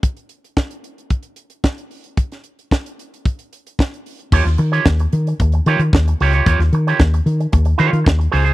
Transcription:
<<
  \new Staff \with { instrumentName = "Clean electric guitar" } { \time 4/4 \key ees \mixolydian \tempo 4 = 112 r1 | r1 | <f' g' des''>16 r8 <f' g' des''>16 r4. <f' g' des''>16 r8. <f' g' des''>16 <f' g' des''>16 | <f' g' des''>16 r8 <f' g' des''>16 r4. <f' g' des''>16 r8. <f' aes' c''>16 <f' aes' c''>16 | }
  \new Staff \with { instrumentName = "Fingered electric bass" } { \clef bass \time 4/4 \key ees \mixolydian r1 | r1 | ees,16 ees,16 ees8 ees,8 ees8 ees,8 ees16 ees16 ees,8 des,8 | ees,16 ees,16 ees8 ees,8 ees8 ees,8 ees16 ees16 ees,8 des,8 | }
  \new DrumStaff \with { instrumentName = "Drums" } \drummode { \time 4/4 <hh bd>16 hh16 hh16 hh16 <bd sn>16 hh16 hh16 hh16 <hh bd>16 hh16 hh16 hh16 <bd sn>16 hh16 hho16 hh16 | <hh bd>16 <hh sn>16 hh16 hh16 <bd sn>16 hh16 hh16 hh16 <hh bd>16 hh16 hh16 hh16 <bd sn>16 hh16 hho16 hh16 | <cymc bd>16 <hh sn>16 hh16 hh16 <bd sn>16 hh16 hh16 hh16 <hh bd>16 hh16 hh16 hh16 <bd sn>16 hh16 hho16 hh16 | <hh bd>16 <hh sn>16 hh16 hh16 <bd sn>16 hh16 hh16 hh16 <hh bd>16 hh16 hh16 hh16 <bd sn>16 hh16 hho16 hh16 | }
>>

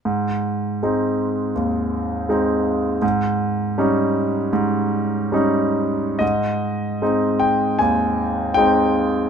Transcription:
<<
  \new Staff \with { instrumentName = "Grand piano" } { \time 4/4 \key aes \major \tempo 4 = 79 r1 | r1 | ees''4. g''8 aes''4 g''4 | }
  \new Staff \with { instrumentName = "Grand piano" } { \time 4/4 \key aes \major aes,4 <aes c' ees'>4 ees,4 <aes c' ees'>4 | aes,4 <g des' ees'>4 aes,4 <g des' ees'>4 | aes,4 <aes c' ees'>4 ees,4 <aes c' ees'>4 | }
>>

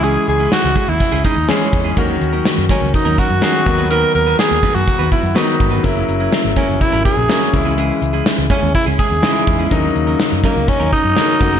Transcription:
<<
  \new Staff \with { instrumentName = "Tenor saxophone" } { \time 4/4 \key dis \phrygian \tempo 4 = 124 gis'8 gis'8 fis'8. e'8. dis'8 cis'8. r16 | r4. cis'8 dis'8 fis'4. | ais'8 ais'8 gis'8. fis'8. e'8 dis'8. r16 | r4. cis'8 e'8 gis'4. |
r4. cis'8 e'8 gis'4. | r4. ais8 cis'8 dis'4. | }
  \new Staff \with { instrumentName = "Clean electric guitar" } { \time 4/4 \key dis \phrygian <gis cis' e' gis'>8 r16 <gis cis' e' gis'>16 r8 <gis cis' e' gis'>16 r8 <gis cis' e' gis'>16 <gis cis' e' gis'>16 r16 <gis cis' e' gis'>16 r8 <gis cis' e' gis'>16 | <fis cis' dis' ais'>8 r16 <fis cis' dis' ais'>16 r8 <fis cis' dis' ais'>16 r8 <fis cis' dis' ais'>16 <fis cis' dis' ais'>16 r16 <fis cis' dis' ais'>16 r8 <b dis' fis' b'>16 | <b dis' fis' b'>8 r16 <b dis' fis' b'>16 r8 <b dis' fis' b'>16 r8 <b dis' fis' b'>16 <b dis' fis' b'>16 r16 <b dis' fis' b'>16 r8 <b dis' fis' b'>16 | <fis cis' e' ais'>8 r16 <fis cis' e' ais'>16 r8 <fis cis' e' ais'>16 r8 <fis cis' e' ais'>16 <fis cis' e' ais'>16 r16 <fis cis' e' ais'>16 r8 <gis cis' e' gis'>16 |
<gis cis' e' gis'>8 r16 <gis cis' e' gis'>16 r8 <gis cis' e' gis'>16 r8 <gis cis' e' gis'>16 <gis cis' e' gis'>16 r16 <gis cis' e' gis'>16 r8 <gis cis' e' gis'>16 | <fis cis' dis' ais'>8 r16 <fis cis' dis' ais'>16 r8 <fis cis' dis' ais'>16 r8 <fis cis' dis' ais'>16 <fis cis' dis' ais'>16 r16 <fis cis' dis' ais'>16 r8 <ais cis' fis' ais'>16 | }
  \new Staff \with { instrumentName = "Grand piano" } { \time 4/4 \key dis \phrygian <e gis cis' gis'>4 r2 <e gis cis' gis'>8. r16 | <dis ais cis' fis'>4. r4. <dis ais cis' gis'>8 <dis fis b fis'>8~ | <dis fis b fis'>4 r2 <dis fis b fis'>8. r16 | <cis fis ais e'>4. r4. <cis fis ais cis'>8 <cis e gis e'>8~ |
<cis e gis e'>4 r2 <cis e gis dis' e'>8. r16 | <cis fis ais dis'>4. r4. <cis fis ais cis'>8 <cis fis ais fis'>8 | }
  \new Staff \with { instrumentName = "Fretless electric bass" } { \clef bass \time 4/4 \key dis \phrygian cis,8 cis,8 r16 cis,16 r16 dis,16 r16 cis,16 r16 dis,16 r8 e,8 | dis,8 dis,8 r16 fis,16 r16 cis,16 r16 dis,16 r16 fis,16 r8 dis,8~ | dis,8 dis,8 r16 dis,16 r16 fis,16 r16 dis,16 r16 fis,16 r8 g,,8 | fis,,8 fis,,8 r16 gis,,16 r16 fis,,16 r16 gis,,16 r16 ais,,16 r8 cis,8~ |
cis,8 cis,8 r16 cis,16 r16 dis,16 r16 cis,16 r16 dis,16 r8 e,8 | dis,8 dis,8 r16 fis,16 r16 cis,16 r16 dis,16 r16 fis,16 r8 fis,,8 | }
  \new DrumStaff \with { instrumentName = "Drums" } \drummode { \time 4/4 hh8 hh8 <hh sn>8 <hh bd>8 <hh bd>8 <hh bd>8 <hh sn>8 <hh bd>8 | <hh bd>8 hh8 <hh sn>8 <hh bd>8 <hh bd>8 <hh bd>8 <hh sn>8 <hh bd>8 | hh8 hh8 <hh sn>8 <hh bd>8 <hh bd>8 <hh bd>8 <hh sn>8 <hh bd>8 | <hh bd>8 hh8 <hh sn>8 <hh bd>8 <hh bd>8 <hh bd>8 <hh sn>8 <hh bd>8 |
hh8 hh8 <hh sn>8 <hh bd>8 <hh bd>8 <hh bd>8 <hh sn>8 <hh bd>8 | <hh bd>8 hh8 <hh sn>8 <hh bd>8 <hh bd>8 <hh bd>8 <hh sn>8 <hh bd>8 | }
>>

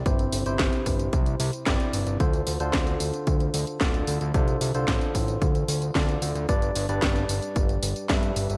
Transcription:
<<
  \new Staff \with { instrumentName = "Tine electric piano" } { \time 4/4 \key d \dorian \tempo 4 = 112 <c c' e' g' c''>8. <c c' e' g' c''>2~ <c c' e' g' c''>16 <c c' e' g' d''>4 | <d d' f' a' c''>8. <d d' f' a' c''>2~ <d d' f' a' c''>16 <d d' f' a' d''>4 | <d d' f' a' c''>8. <d d' f' a' c''>2~ <d d' f' a' c''>16 <d d' f' a' d''>4 | <g d' g' b' d''>8. <g d' g' b' d''>2~ <g d' g' b' d''>16 <g d' g' b' e''>4 | }
  \new Staff \with { instrumentName = "Analog synth bass" } { \clef bass \time 4/4 \key d \dorian g,,8 g,,16 g,,16 g,,16 r16 g,,8 c,8 c,16 r16 g,,16 r16 g,,16 g,,16 | d,8 d,16 d,16 d,8 d,16 r16 d,8 d,16 r16 d,,8 d,16 d,16 | c,8 c,16 c,16 a,,16 r16 a,,8 d,8 d,8 d,8 d,16 d,16 | g,,8 g,,16 g,,16 g,,8 g,,16 r16 g,,8 g,,16 r16 g,8 g,,16 g,,16 | }
  \new DrumStaff \with { instrumentName = "Drums" } \drummode { \time 4/4 <hh bd tamb>16 <hh tamb>16 <hho tamb>16 <hh tamb>16 <hc hh bd sn tamb>16 <hh tamb>16 <hho bd tamb>16 <hh tamb>16 <hh bd tamb>16 <hh tamb>16 <hho tamb>16 <hh tamb>16 <hc hh bd sn tamb>16 <hh tamb>16 <hho tamb>16 <hh tamb>16 | <hh bd tamb>16 <hh tamb>16 <hho tamb>16 <hh tamb>16 <hc hh bd sn tamb>16 <hh tamb>16 <hho tamb>16 <hh tamb>16 <hh bd tamb>16 <hh tamb>16 <hho tamb>16 <hh tamb>16 <hc hh bd sn tamb>16 <hh tamb>16 <hho tamb>16 <hh tamb>16 | <hh bd tamb>16 <hh tamb>16 <hho tamb>16 <hh tamb>16 <hc hh bd sn tamb>16 <hh tamb>16 <hho bd tamb>16 <hh tamb>16 <hh bd tamb>16 <hh tamb>16 <hho tamb>16 <hh tamb>16 <hc hh bd sn tamb>16 <hh tamb>16 <hho tamb>16 <hh tamb>16 | <hh bd tamb>16 <hh tamb>16 <hho tamb>16 <hh tamb>16 <hc hh bd sn tamb>16 <hh tamb>16 <hho tamb>16 <hh tamb>16 <hh bd tamb>16 <hh tamb>16 <hho tamb>16 <hh tamb>16 <hc hh bd sn tamb>16 <hh tamb>16 <hho tamb>16 <hh tamb>16 | }
>>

